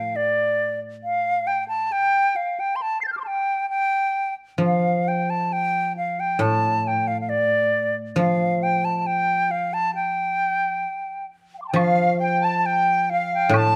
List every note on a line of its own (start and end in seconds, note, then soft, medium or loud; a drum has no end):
0.00 1.88 A2 soft
0.00 0.13 F3 soft
0.00 0.18 F5 medium
0.16 0.80 D5 medium
1.04 1.49 F5 medium
1.47 1.68 G5 medium
1.68 1.94 A5 medium
1.92 2.38 G5 medium
2.36 2.61 F5 medium
2.60 2.77 G5 medium
2.76 2.83 C6 medium
2.82 3.01 A5 medium
3.01 3.07 A6 soft
3.01 3.03 C7 soft
3.07 3.12 G6 soft
3.12 3.17 F6 soft
3.17 3.24 C6 soft
3.17 3.20 D6 soft
3.24 3.69 G5 medium
3.24 3.28 A5 soft
3.70 4.34 G5 medium
4.58 7.29 F3 soft
4.62 5.09 F5 medium
5.08 5.32 G5 medium
5.30 5.54 A5 medium
5.53 5.97 G5 medium
5.97 6.21 F5 medium
6.20 6.43 G5 medium
6.39 9.05 A2 medium
6.39 6.89 A5 medium
6.87 7.09 G5 medium
7.07 7.20 F5 medium
7.21 7.31 F5 soft
7.29 7.96 D5 medium
8.16 10.84 F3 medium
8.16 8.64 F5 medium
8.63 8.86 G5 medium
8.85 8.98 A5 medium
8.98 9.08 A5 medium
9.07 9.53 G5 medium
9.51 9.75 F5 medium
9.73 9.94 A5 medium
9.95 11.26 G5 medium
11.54 11.58 G5 soft
11.58 11.61 F5 soft
11.58 11.64 D6 soft
11.64 11.72 A5 soft
11.64 11.67 C6 soft
11.68 11.78 G5 soft
11.72 13.76 F3 medium
11.72 12.17 F5 medium
11.72 11.74 G5 soft
11.72 high woodblock medium
11.77 12.21 F5 medium
12.19 12.40 G5 medium
12.19 12.46 G5 medium
12.41 12.56 A5 medium
12.41 12.68 A5 medium
12.59 12.67 A5 soft
12.66 13.05 G5 medium
12.66 13.10 G5 medium
13.05 13.12 G5 soft
13.10 13.54 F5 medium
13.10 13.31 F5 medium
13.34 13.58 G5 medium
13.49 13.76 A2 medium
13.54 13.76 A5 medium
13.54 high woodblock medium